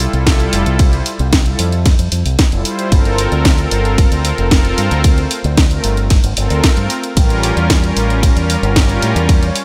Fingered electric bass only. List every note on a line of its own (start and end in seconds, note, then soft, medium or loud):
0.13 0.47 C2 loud
0.53 0.63 F1 medium
0.66 1.00 C2 loud
1.20 1.53 C2 loud
1.59 1.93 F2 medium
1.99 2.09 F2 medium
2.12 2.22 F2 medium
2.26 2.35 C2 medium
2.52 2.62 F1 medium
2.92 3.26 G1 loud
3.32 3.66 D2 loud
3.72 4.06 G1 medium
4.12 4.31 D2 medium
4.38 4.72 F1 loud
4.78 4.88 G2 medium
4.91 5.25 D2 loud
5.44 5.78 D2 loud
5.84 6.18 G1 medium
6.24 6.33 G1 medium
6.37 6.47 G1 medium
6.51 6.60 D2 medium
6.77 6.87 G2 medium
7.17 7.51 A1 loud
7.57 7.90 E2 loud
7.96 8.30 A1 medium
8.36 8.55 E2 loud
8.63 8.97 G1 medium
9.02 9.12 A2 medium
9.16 9.50 E2 loud